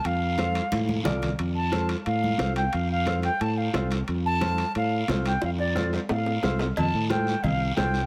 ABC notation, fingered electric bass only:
X:1
M:4/4
L:1/8
Q:1/4=179
K:F
V:1 name="Fingered electric bass" clef=bass
F,,4 A,,2 C,,2 | F,,4 A,,2 C,,2 | F,,4 A,,2 C,,2 | F,,4 A,,2 C,,2 |
F,,4 A,,2 C,,2 | F,, A,,3 C,,2 C,,2 |]